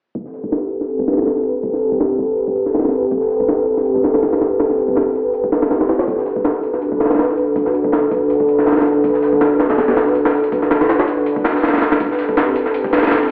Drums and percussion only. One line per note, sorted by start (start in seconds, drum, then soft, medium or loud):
0.15 kick medium
0.15 open hi-hat medium
0.15 tambourine medium
0.26 snare soft
0.33 snare soft
0.33 open hi-hat medium
0.33 tambourine medium
0.44 kick medium
0.52 snare loud
0.52 open hi-hat medium
0.52 tambourine medium
0.70 open hi-hat medium
0.70 tambourine medium
0.81 snare soft
0.89 open hi-hat medium
0.89 tambourine medium
0.99 kick medium
1.08 snare medium
1.08 open hi-hat medium
1.08 tambourine medium
1.13 snare medium
1.13 open hi-hat medium
1.18 snare medium
1.18 open hi-hat medium
1.22 snare medium
1.22 open hi-hat medium
1.26 snare loud
1.26 open hi-hat medium
1.26 tambourine medium
1.36 snare soft
1.45 open hi-hat medium
1.45 tambourine medium
1.63 kick loud
1.63 open hi-hat medium
1.63 tambourine medium
1.73 snare soft
1.82 open hi-hat medium
1.82 tambourine medium
1.92 kick medium
2.00 snare loud
2.00 open hi-hat medium
2.00 tambourine medium
2.19 kick medium
2.19 open hi-hat medium
2.19 tambourine medium
2.37 open hi-hat medium
2.37 tambourine medium
2.47 kick medium
2.56 open hi-hat medium
2.56 tambourine medium
2.66 snare soft
2.74 snare loud
2.74 snare medium
2.74 open hi-hat medium
2.74 tambourine medium
2.79 snare medium
2.79 open hi-hat medium
2.85 snare medium
2.85 open hi-hat medium
2.89 snare medium
2.89 open hi-hat medium
2.89 tambourine medium
2.93 snare soft
2.93 open hi-hat medium
3.11 kick loud
3.11 open hi-hat medium
3.11 tambourine medium
3.21 snare medium
3.30 snare soft
3.30 open hi-hat medium
3.30 tambourine medium
3.40 kick medium
3.48 snare loud
3.48 open hi-hat medium
3.48 tambourine medium
3.67 open hi-hat medium
3.67 tambourine medium
3.77 snare soft
3.86 open hi-hat medium
3.86 tambourine medium
3.96 kick medium
4.04 snare medium
4.04 open hi-hat medium
4.04 tambourine medium
4.14 snare medium
4.14 open hi-hat medium
4.22 snare medium
4.22 snare loud
4.22 open hi-hat medium
4.22 tambourine medium
4.32 snare medium
4.32 open hi-hat medium
4.41 snare medium
4.41 open hi-hat medium
4.41 tambourine medium
4.60 snare medium
4.60 open hi-hat medium
4.60 tambourine medium
4.70 snare soft
4.78 open hi-hat medium
4.78 tambourine medium
4.88 kick medium
4.95 snare loud
4.95 open hi-hat medium
4.95 tambourine medium
5.15 open hi-hat medium
5.15 tambourine medium
5.34 open hi-hat medium
5.34 tambourine medium
5.44 kick medium
5.52 snare medium
5.52 open hi-hat medium
5.52 tambourine medium
5.62 snare soft
5.62 snare medium
5.62 open hi-hat medium
5.70 snare medium
5.70 snare loud
5.70 open hi-hat medium
5.70 tambourine medium
5.81 snare medium
5.81 open hi-hat medium
5.89 snare medium
5.89 snare soft
5.89 open hi-hat medium
5.89 tambourine medium
5.99 snare medium
5.99 open hi-hat medium
6.07 kick loud
6.07 open hi-hat medium
6.07 tambourine medium
6.18 snare soft
6.26 snare soft
6.26 open hi-hat medium
6.26 tambourine medium
6.36 kick medium
6.45 snare loud
6.45 open hi-hat medium
6.45 tambourine medium
6.63 open hi-hat medium
6.63 tambourine medium
6.73 snare soft
6.82 open hi-hat medium
6.82 tambourine medium
6.92 kick medium
7.00 snare medium
7.00 open hi-hat medium
7.00 tambourine medium
7.05 snare medium
7.05 open hi-hat medium
7.10 snare medium
7.10 open hi-hat medium
7.15 snare medium
7.15 open hi-hat medium
7.15 tambourine medium
7.19 snare loud
7.19 open hi-hat medium
7.29 snare soft
7.36 open hi-hat medium
7.36 tambourine medium
7.56 kick loud
7.56 open hi-hat medium
7.56 tambourine medium
7.66 snare soft
7.74 open hi-hat medium
7.74 tambourine medium
7.84 kick medium
7.92 snare loud
7.92 open hi-hat medium
7.92 tambourine medium
8.11 kick medium
8.11 open hi-hat medium
8.11 tambourine medium
8.30 open hi-hat medium
8.30 tambourine medium
8.40 kick medium
8.48 open hi-hat medium
8.48 tambourine medium
8.58 snare soft
8.66 snare loud
8.66 snare medium
8.66 open hi-hat medium
8.66 tambourine medium
8.72 snare medium
8.72 open hi-hat medium
8.77 snare medium
8.77 open hi-hat medium
8.81 snare medium
8.81 open hi-hat medium
8.81 tambourine medium
8.86 snare soft
8.86 open hi-hat medium
9.04 kick loud
9.04 open hi-hat medium
9.04 tambourine medium
9.14 snare medium
9.22 snare soft
9.22 open hi-hat medium
9.22 tambourine medium
9.33 kick medium
9.41 snare loud
9.41 open hi-hat medium
9.41 tambourine medium
9.60 snare medium
9.60 open hi-hat medium
9.60 tambourine medium
9.70 snare loud
9.70 open hi-hat medium
9.78 snare medium
9.78 open hi-hat medium
9.78 tambourine medium
9.88 snare medium
9.88 open hi-hat medium
9.97 snare medium
9.97 open hi-hat medium
9.97 tambourine medium
10.07 snare soft
10.15 open hi-hat medium
10.15 tambourine medium
10.25 snare medium
10.25 snare loud
10.25 open hi-hat medium
10.25 tambourine medium
10.34 snare soft
10.44 open hi-hat medium
10.44 tambourine medium
10.52 kick loud
10.52 open hi-hat medium
10.52 tambourine medium
10.62 snare soft
10.71 snare loud
10.71 open hi-hat medium
10.71 tambourine medium
10.81 snare medium
10.81 open hi-hat medium
10.89 snare medium
10.89 open hi-hat medium
10.89 tambourine medium
10.99 snare loud
10.99 open hi-hat medium
11.08 open hi-hat medium
11.08 tambourine medium
11.26 open hi-hat medium
11.26 tambourine medium
11.36 kick medium
11.44 snare medium
11.44 open hi-hat medium
11.44 tambourine medium
11.49 snare medium
11.49 tambourine medium
11.55 snare medium
11.55 tambourine medium
11.59 snare medium
11.59 tambourine medium
11.63 snare loud
11.63 snare medium
11.63 open hi-hat medium
11.63 tambourine medium
11.68 snare medium
11.68 open hi-hat medium
11.73 snare medium
11.73 open hi-hat medium
11.78 snare medium
11.78 open hi-hat medium
11.78 tambourine medium
11.82 snare medium
11.82 open hi-hat medium
11.91 snare soft
11.91 snare medium
11.91 open hi-hat medium
12.00 kick loud
12.00 open hi-hat medium
12.00 tambourine medium
12.11 snare medium
12.19 snare soft
12.19 open hi-hat medium
12.19 tambourine medium
12.29 kick medium
12.37 snare loud
12.37 open hi-hat medium
12.37 tambourine medium
12.55 open hi-hat medium
12.55 tambourine medium
12.66 snare soft
12.74 open hi-hat medium
12.74 tambourine medium
12.84 kick medium
12.93 snare medium
12.93 open hi-hat medium
12.93 tambourine medium
12.98 snare medium
12.98 open hi-hat medium
13.03 snare medium
13.03 open hi-hat medium
13.07 snare medium
13.07 open hi-hat medium
13.11 snare loud
13.11 open hi-hat medium
13.11 tambourine medium
13.21 snare soft